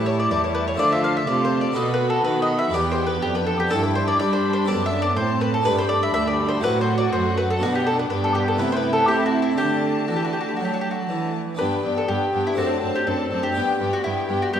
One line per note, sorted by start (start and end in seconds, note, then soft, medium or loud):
0.00 0.26 A2 soft
0.00 0.29 A2 soft
0.00 0.28 G3 soft
0.00 0.73 C#4 soft
0.00 0.74 E4 soft
0.00 0.77 E4 soft
0.00 0.75 G4 soft
0.00 0.76 A5 soft
0.06 0.17 C#5 medium
0.20 0.30 D5 medium
0.29 0.78 E2 medium
0.29 0.75 E2 soft
0.29 0.77 G3 soft
0.29 0.42 D5 medium
0.44 0.54 C#5 soft
0.55 0.66 B4 medium
0.68 0.78 C#5 medium
0.74 1.27 F3 soft
0.74 1.24 A3 soft
0.74 1.72 F4 soft
0.74 1.73 A4 soft
0.78 1.26 D3 medium
0.78 1.23 D3 soft
0.78 1.26 F4 soft
0.78 0.90 D5 medium
0.78 1.74 A5 soft
0.92 1.03 E5 medium
1.04 1.15 F5 medium
1.17 1.27 E5 medium
1.27 1.75 C3 soft
1.27 1.72 C3 soft
1.27 1.75 A3 soft
1.27 1.75 F4 soft
1.27 1.42 D5 medium
1.45 1.59 C5 medium
1.61 1.75 D5 medium
1.72 2.68 B3 soft
1.72 2.72 B3 soft
1.72 2.69 F#4 soft
1.72 2.70 A4 soft
1.76 2.24 B2 soft
1.76 2.21 B2 soft
1.76 2.72 F#4 soft
1.76 1.91 D#5 medium
1.76 2.24 B5 soft
1.94 2.08 B4 medium
2.10 2.24 A4 medium
2.24 2.73 D#3 medium
2.24 2.70 D#3 soft
2.24 2.40 B4 medium
2.24 2.73 B5 soft
2.42 2.57 D#5 medium
2.59 2.73 E5 medium
2.69 3.19 B3 soft
2.69 3.69 B3 soft
2.69 3.67 E4 soft
2.69 3.68 G4 soft
2.69 3.70 G5 soft
2.74 3.22 E2 medium
2.74 3.19 E2 soft
2.74 3.23 G4 soft
2.74 2.89 D5 medium
2.92 3.06 C5 medium
3.07 3.22 B4 medium
3.22 3.70 F2 soft
3.22 3.67 F2 soft
3.22 5.13 D4 soft
3.22 3.34 G4 medium
3.35 3.46 B4 medium
3.46 3.58 A4 medium
3.60 3.71 G4 medium
3.67 4.64 B3 soft
3.67 4.64 D4 soft
3.67 4.65 G4 soft
3.67 3.82 A4 medium
3.67 4.19 G5 soft
3.71 4.19 G2 medium
3.71 4.16 G2 soft
3.71 4.20 E4 soft
3.84 3.95 B4 medium
3.95 4.07 C5 medium
4.08 4.18 D5 medium
4.19 4.68 G3 medium
4.19 4.65 G3 soft
4.19 4.68 D4 medium
4.19 4.31 D5 medium
4.19 4.68 B5 soft
4.33 4.51 C5 medium
4.53 4.68 C5 medium
4.64 5.17 F#2 medium
4.64 5.61 C4 soft
4.64 5.62 D4 soft
4.64 5.62 A4 soft
4.64 4.83 D5 medium
4.68 5.13 F#2 soft
4.68 5.16 B3 soft
4.68 5.16 A5 soft
4.86 5.00 E5 medium
5.02 5.16 D5 medium
5.16 5.65 A2 medium
5.16 5.62 A2 soft
5.16 6.15 A3 medium
5.16 5.66 C4 medium
5.16 5.39 C5 medium
5.16 5.65 A5 soft
5.41 5.53 B4 medium
5.54 5.65 A4 medium
5.62 6.59 B3 soft
5.62 6.59 D4 soft
5.62 6.62 D4 medium
5.62 6.60 G4 soft
5.62 5.77 B4 medium
5.62 6.64 B5 medium
5.66 6.15 G2 medium
5.66 6.11 G2 soft
5.79 5.89 C5 medium
5.89 6.01 D5 medium
6.03 6.13 E5 medium
6.14 6.63 D2 medium
6.14 6.60 D2 soft
6.14 6.64 G3 soft
6.14 6.26 E5 medium
6.28 6.46 D5 medium
6.49 6.63 C5 medium
6.60 7.13 F#3 soft
6.60 7.57 A3 soft
6.60 7.58 C4 soft
6.60 7.58 F#4 soft
6.60 8.08 F#5 medium
6.64 7.12 A2 medium
6.64 7.09 A2 soft
6.64 7.62 F#4 medium
6.64 6.79 B4 medium
6.81 6.96 C5 medium
6.98 7.12 D5 medium
7.13 7.61 F#2 medium
7.13 7.58 F#2 soft
7.13 7.62 A3 soft
7.13 7.35 C5 medium
7.37 7.49 B4 medium
7.50 7.61 A4 medium
7.59 8.07 B2 soft
7.59 8.11 B2 medium
7.59 8.55 B3 soft
7.59 8.09 B3 soft
7.59 8.56 D4 soft
7.59 8.60 D4 medium
7.63 7.74 F#4 medium
7.75 7.86 G4 medium
7.87 7.98 A4 medium
7.99 8.09 B4 medium
8.10 8.59 G2 medium
8.10 8.56 G2 soft
8.10 9.07 B3 soft
8.10 8.22 B4 medium
8.10 8.58 G5 soft
8.24 8.35 A4 medium
8.35 8.47 G4 medium
8.48 8.59 A4 medium
8.56 9.05 C3 soft
8.56 9.09 C3 medium
8.56 9.54 A3 soft
8.56 9.55 E4 soft
8.56 9.59 E4 soft
8.56 8.71 B4 medium
8.56 9.08 G5 soft
8.72 8.76 C5 medium
8.77 8.92 B4 medium
8.93 9.08 A4 medium
9.08 9.58 A3 soft
9.08 9.58 C4 soft
9.08 9.55 C4 soft
9.08 9.24 G4 medium
9.08 9.58 A5 soft
9.26 9.41 F#4 medium
9.42 9.57 E4 medium
9.56 10.09 D3 soft
9.56 10.05 D3 soft
9.56 10.06 A3 soft
9.56 11.36 A3 soft
9.56 11.54 D4 soft
9.56 11.35 D4 soft
9.56 10.05 G4 medium
9.56 11.35 A5 soft
10.08 10.55 E3 soft
10.08 10.58 E3 medium
10.08 10.16 F#4 soft
10.16 10.24 G4 soft
10.25 10.33 F#4 soft
10.33 10.40 G4 soft
10.41 10.48 F#4 soft
10.49 10.56 G4 soft
10.56 11.08 F#3 medium
10.56 11.05 F#3 soft
10.56 10.65 F#4 soft
10.65 10.73 G4 soft
10.74 10.81 F#4 soft
10.81 10.90 G4 soft
10.91 11.31 F#4 soft
11.09 11.55 E3 soft
11.09 11.58 E3 soft
11.55 12.52 B3 soft
11.55 12.53 D4 soft
11.55 11.93 B4 medium
11.59 11.81 G2 soft
11.59 11.67 G2 soft
11.59 11.83 B3 soft
11.59 11.83 D4 soft
11.59 11.82 G5 soft
11.83 12.06 G2 soft
11.83 11.92 G2 soft
11.83 12.07 B3 soft
11.83 12.08 D4 soft
11.83 12.07 G5 soft
11.98 12.08 A4 medium
12.08 12.16 G2 soft
12.08 12.31 G2 soft
12.08 12.32 B3 soft
12.08 12.32 D4 soft
12.08 12.43 G4 soft
12.08 12.32 G5 soft
12.33 12.41 G2 soft
12.33 12.55 G2 soft
12.33 12.57 B3 soft
12.33 12.57 D4 soft
12.33 12.57 G5 soft
12.47 12.57 E4 soft
12.54 12.65 F#2 soft
12.54 13.50 A3 soft
12.54 13.51 C4 soft
12.54 12.81 C4 soft
12.54 13.52 D4 soft
12.54 12.92 F#4 soft
12.54 12.81 A5 soft
12.58 12.80 F#2 soft
12.58 12.81 D4 soft
12.82 12.90 F#2 soft
12.82 13.04 F#2 soft
12.82 13.06 C4 soft
12.82 13.06 D4 soft
12.82 13.05 A5 soft
12.95 13.06 G4 medium
13.06 13.15 F#2 soft
13.06 13.29 F#2 soft
13.06 13.31 C4 soft
13.06 13.30 D4 soft
13.06 13.41 A4 medium
13.06 13.30 A5 soft
13.31 13.39 F#2 soft
13.31 13.53 F#2 soft
13.31 13.55 C4 soft
13.31 13.55 D4 soft
13.31 13.55 A5 soft
13.43 13.89 G4 medium
13.52 13.63 G2 soft
13.52 13.77 G2 soft
13.52 14.60 B3 soft
13.52 13.79 B3 soft
13.52 14.60 D4 soft
13.52 13.79 G4 soft
13.52 13.79 G5 soft
13.80 13.88 G2 soft
13.80 14.02 G2 soft
13.80 14.03 B3 soft
13.80 14.03 G4 soft
13.80 14.03 G5 soft
13.93 14.04 F#4 medium
14.04 14.12 G2 soft
14.04 14.27 G2 soft
14.04 14.27 B3 soft
14.04 14.38 E4 medium
14.04 14.28 G4 soft
14.04 14.28 G5 soft
14.28 14.51 G2 soft
14.28 14.37 G2 soft
14.28 14.52 B3 soft
14.28 14.52 G4 soft
14.28 14.53 G5 soft
14.42 14.53 F#4 medium
14.53 14.60 G2 soft
14.53 14.60 B3 soft
14.53 14.60 G4 soft
14.53 14.60 G4 medium
14.53 14.60 G5 soft